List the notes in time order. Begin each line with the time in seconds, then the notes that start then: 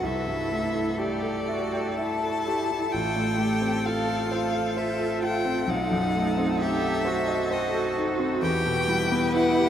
0.03 C2 E4 A4 E5
0.26 G2
0.51 A3
0.75 E4
0.98 G4 D5
1.22 A4
1.48 F#4 E5
1.73 G5
1.98 E4 E5 A5
2.23 A4
2.47 G4
2.71 E4
2.92 A1 F4 G5
3.16 A2
3.38 A3 G4
3.61 C4
3.85 F4 A4 F5
4.08 A4
4.31 F4 C5
4.54 F5
4.77 C5 E5
5.00 A4
5.22 F4 G5
5.45 C4
5.67 B1 D#4 A4 F#5
5.91 F#2
6.15 A3
6.38 C4
6.60 D#4 G4 E5
6.83 A4
7.05 F#4 C5
7.27 D#5
7.51 F#4 C5 D#5
7.73 A4
7.96 D#4
8.19 C4
8.41 E2 G4 B4 G5
8.66 B2
8.88 G3 E4
9.12 B3
9.35 E4 F#5
9.59 G4